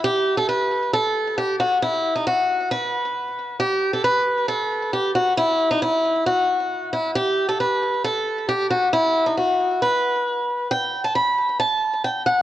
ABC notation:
X:1
M:4/4
L:1/16
Q:1/4=135
K:Bphr
V:1 name="Steel-string acoustic guitar"
G3 A B4 A4 G2 F2 | E3 ^D F4 B8 | G3 A B4 A4 G2 F2 | E3 ^D E4 F6 E2 |
G3 A B4 A4 G2 F2 | E3 ^D F4 B8 | g3 a b4 a4 g2 f2 |]